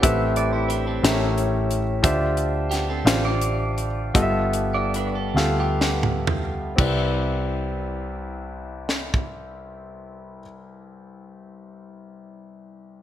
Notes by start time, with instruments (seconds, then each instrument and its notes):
Already playing: clean electric guitar B3 G4
0.02 fingered electric bass A1, grand piano A2 C4 G4 A4 B4 E5, kick, closed hi-hat
0.36 clean electric guitar D5, closed hi-hat
0.53 clean electric guitar E4 C5
0.69 clean electric guitar D4 B4, closed hi-hat
0.87 clean electric guitar C4 A4
1.03 fingered electric bass A1, grand piano A2 C4 G4 A4 A#4 E5, snare, closed hi-hat
1.09 grand piano C#4
1.38 closed hi-hat
1.71 closed hi-hat
2.03 fingered electric bass D2, grand piano D3 D4 F4 G4 C5 E5, kick, closed hi-hat
2.37 closed hi-hat
2.71 clean electric guitar B3 G4, snare, closed hi-hat
2.90 clean electric guitar C4 A4
3.05 fingered electric bass A1, grand piano D4 F4 G4 C5 F5, snare, closed hi-hat
3.25 clean electric guitar F4 D5
3.42 closed hi-hat
3.78 closed hi-hat
4.14 fingered electric bass G1, grand piano G2 B3 F4 G4 A4 D#5, kick, closed hi-hat
4.22 grand piano E5
4.53 closed hi-hat
4.74 clean electric guitar F4 D5
4.94 clean electric guitar D4 B4, closed hi-hat
5.15 clean electric guitar A4
5.35 fingered electric bass D2, grand piano B3 F4 G4 A4 F5, snare
5.60 clean electric guitar B3 G4
5.81 snare
6.03 mid tom
6.27 floor tom
6.76 grand piano C2 C4 E4 G4 B4, fingered electric bass C2, kick, crash
6.80 grand piano D5
8.89 snare
9.14 kick